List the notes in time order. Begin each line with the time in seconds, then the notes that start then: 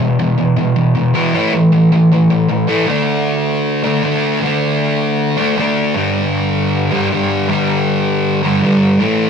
0.00 E2 B2
0.19 E2 B2
0.38 E2 B2
0.56 E2 B2
0.76 E2 B2
0.95 E2 B2
1.14 E2 B2 E3
1.34 A2 E3 A3
1.54 A2 E3
1.73 A2 E3
1.92 A2 E3
2.12 A2 E3
2.31 A2 E3
2.49 A2 E3
2.68 A2 E3 A3
2.86 D3 A3 D4
3.83 D3 A3 D4
4.03 D3 A3 D4
4.41 D3 A3
4.45 D4
5.37 D3 A3 D4
5.56 D3 A3 D4
5.94 G2 D3 G3
6.91 G2 D3 G3
7.10 G2 D3 G3
7.48 G2 D3 G3
8.43 G2 D3 G3
8.62 G2 D3 G3
8.99 A2 E3 A3